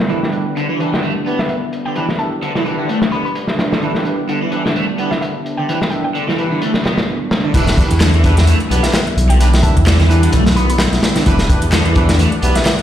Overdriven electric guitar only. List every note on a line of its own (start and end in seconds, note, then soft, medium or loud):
0.10 0.19 E3 medium
0.57 0.66 D3 medium
0.69 0.78 E3 medium
0.80 0.91 E3 loud
0.92 1.02 D3 medium
1.02 1.12 A3 medium
1.26 1.38 B3 medium
1.86 1.93 D3 medium
1.96 2.06 E3 medium
2.43 2.52 D3 medium
2.56 2.64 E3 medium
2.65 2.77 E3 loud
2.79 2.88 D3 medium
2.89 2.99 A3 medium
3.12 3.25 B3 medium
3.72 3.79 D3 medium
3.83 3.92 E3 medium
4.29 4.38 D3 medium
4.42 4.51 E3 loud
4.52 4.64 E3 medium
4.66 4.75 D3 medium
4.76 4.85 A3 medium
4.99 5.11 B3 medium
5.59 5.66 D3 medium
5.69 5.78 E3 medium
6.15 6.24 D3 medium
6.28 6.37 E3 medium
6.38 6.50 E3 loud
6.51 6.61 D3 medium
6.62 6.71 A3 medium
6.85 6.97 B3 medium
7.45 7.52 D3 medium
7.55 7.64 E3 medium
8.01 8.11 D3 medium
8.14 8.23 E3 loud
8.24 8.36 E3 loud
8.38 8.47 D3 medium
8.48 8.57 A3 medium
8.70 8.83 B3 medium
9.30 9.37 D3 medium
9.40 9.50 E3 medium
9.87 9.96 D3 medium
10.00 10.09 E3 loud
10.10 10.22 E3 loud
10.23 10.33 D3 medium
10.33 10.43 A3 medium
10.57 10.69 B3 medium
11.16 11.24 D3 medium
11.26 11.36 E3 medium
11.73 11.82 D3 medium
11.86 11.95 E3 loud
11.96 12.08 E3 loud
12.10 12.19 D3 medium
12.19 12.29 A3 medium
12.43 12.55 B3 medium